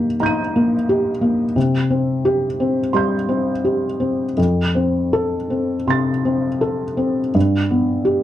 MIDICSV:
0, 0, Header, 1, 2, 480
1, 0, Start_track
1, 0, Tempo, 687285
1, 1089, Time_signature, 4, 2, 24, 8
1, 2543, Tempo, 748130
1, 3983, Tempo, 725514
1, 5535, End_track
2, 0, Start_track
2, 0, Title_t, "Felt piano"
2, 0, Program_c, 0, 0
2, 0, Control_c, 0, 64, 127
2, 0, Note_on_c, 0, 51, 38
2, 0, Note_on_c, 0, 58, 32
2, 0, Note_on_c, 0, 67, 49
2, 113, Note_off_c, 0, 51, 0
2, 141, Note_on_c, 0, 82, 30
2, 143, Note_on_c, 0, 63, 35
2, 161, Note_on_c, 0, 91, 30
2, 181, Note_on_c, 0, 99, 28
2, 285, Note_off_c, 0, 58, 0
2, 390, Note_on_c, 0, 58, 37
2, 523, Note_off_c, 0, 63, 0
2, 623, Note_off_c, 0, 67, 0
2, 623, Note_on_c, 0, 67, 41
2, 764, Note_off_c, 0, 58, 0
2, 847, Note_on_c, 0, 58, 35
2, 997, Note_off_c, 0, 67, 0
2, 1060, Note_off_c, 0, 82, 0
2, 1071, Note_off_c, 0, 91, 0
2, 1081, Note_off_c, 0, 99, 0
2, 1086, Note_off_c, 0, 58, 0
2, 1089, Note_on_c, 0, 48, 45
2, 1100, Control_c, 0, 64, 0
2, 1209, Control_c, 0, 64, 127
2, 1330, Note_on_c, 0, 60, 33
2, 1572, Note_on_c, 0, 67, 50
2, 1713, Note_off_c, 0, 60, 0
2, 1816, Note_on_c, 0, 60, 33
2, 1956, Note_off_c, 0, 67, 0
2, 2022, Note_off_c, 0, 48, 0
2, 2047, Note_on_c, 0, 84, 29
2, 2052, Note_on_c, 0, 55, 34
2, 2071, Note_on_c, 0, 91, 28
2, 2201, Note_off_c, 0, 60, 0
2, 2295, Note_on_c, 0, 60, 35
2, 2444, Note_off_c, 0, 55, 0
2, 2546, Note_on_c, 0, 67, 35
2, 2681, Note_off_c, 0, 60, 0
2, 2773, Note_on_c, 0, 60, 30
2, 2919, Note_off_c, 0, 67, 0
2, 2988, Note_off_c, 0, 84, 0
2, 2998, Note_off_c, 0, 91, 0
2, 3013, Note_off_c, 0, 60, 0
2, 3013, Note_on_c, 0, 41, 40
2, 3027, Control_c, 0, 64, 0
2, 3154, Control_c, 0, 64, 127
2, 3255, Note_on_c, 0, 60, 27
2, 3498, Note_on_c, 0, 69, 40
2, 3645, Note_off_c, 0, 60, 0
2, 3737, Note_on_c, 0, 60, 27
2, 3886, Note_off_c, 0, 69, 0
2, 3956, Note_off_c, 0, 41, 0
2, 3974, Note_on_c, 0, 48, 27
2, 3977, Note_on_c, 0, 84, 23
2, 3995, Note_on_c, 0, 93, 26
2, 4126, Note_off_c, 0, 60, 0
2, 4225, Note_on_c, 0, 60, 31
2, 4367, Note_off_c, 0, 48, 0
2, 4463, Note_on_c, 0, 69, 32
2, 4613, Note_off_c, 0, 60, 0
2, 4701, Note_on_c, 0, 60, 30
2, 4853, Note_off_c, 0, 69, 0
2, 4922, Note_off_c, 0, 84, 0
2, 4931, Note_off_c, 0, 93, 0
2, 4947, Note_off_c, 0, 60, 0
2, 4950, Note_on_c, 0, 43, 41
2, 4965, Control_c, 0, 64, 0
2, 5078, Control_c, 0, 64, 127
2, 5187, Note_on_c, 0, 59, 30
2, 5415, Note_on_c, 0, 67, 42
2, 5535, Note_off_c, 0, 43, 0
2, 5535, Note_off_c, 0, 59, 0
2, 5535, Note_off_c, 0, 67, 0
2, 5535, End_track
0, 0, End_of_file